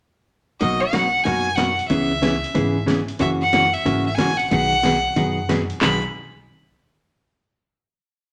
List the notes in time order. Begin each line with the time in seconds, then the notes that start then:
0.60 B1 B2 F#3 A#3 D#4 F#4 D#5, kick, open hi-hat
0.80 F#5
0.93 B2 F#3 A#3 D#4 F#4, snare, closed hi-hat
1.24 F#2 B2 F#3 A#3 D#4 F#4 G#5, kick, open hi-hat
1.55 B2 F#3 A#3 D#4 F#4 F#5, snare, closed hi-hat
1.79 open hi-hat
1.88 C#2 C#3 E3 B3 C#4 G#4 E5, kick, open hi-hat
2.22 C#3 E3 B3 C#4 G#4, snare, closed hi-hat
2.44 open hi-hat
2.54 G#1 C#3 E3 B3 C#4 G#4, kick, open hi-hat
2.86 C#3 E3 B3 C#4 G#4, snare, closed hi-hat
3.08 open hi-hat
3.19 F#2 C#3 E3 A#3 C#4 F#4 E5, kick, open hi-hat
3.41 F#5
3.53 C#3 E3 A#3 C#4 F#4, snare, closed hi-hat
3.74 E5, open hi-hat
3.85 G#1 C#3 E3 A#3 C#4 F#4, kick, open hi-hat
4.06 E5
4.15 A#1 C#3 E3 C#4 G#5, snare, closed hi-hat
4.19 A#3 F#4
4.37 F#5, open hi-hat
4.50 B1 B2 D#3 F#3 B3 D#4 G#4 F#5, kick, open hi-hat
4.83 B2 D#3 F#3 B3 D#4 G#4, snare, closed hi-hat
5.16 F#2 B2 D#3 F#3 B3 D#4 G#4, kick, open hi-hat
5.49 B2 D#3 F#3 B3 D#4 G#4, snare, closed hi-hat
5.70 open hi-hat
5.81 B1 B2 D#3 F#3 B3 D#4 G#4 B5, snare, clap